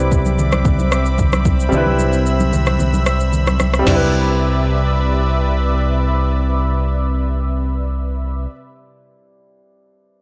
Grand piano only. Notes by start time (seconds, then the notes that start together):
Already playing: G3 C4 D4 E4 B4
1.69 G3 C4 D4
1.75 E4 B4
3.79 G3 C4
3.87 D4 E4
3.95 B4